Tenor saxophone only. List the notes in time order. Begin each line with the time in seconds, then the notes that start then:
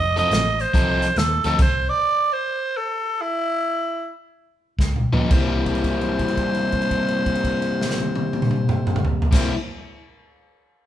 Already playing: D#5
0.19 D#5
0.61 C5
1.18 A4
1.46 A4
1.62 C5
1.89 D5
2.33 C5
2.77 A4
3.21 E4
5.32 C5
9.33 C5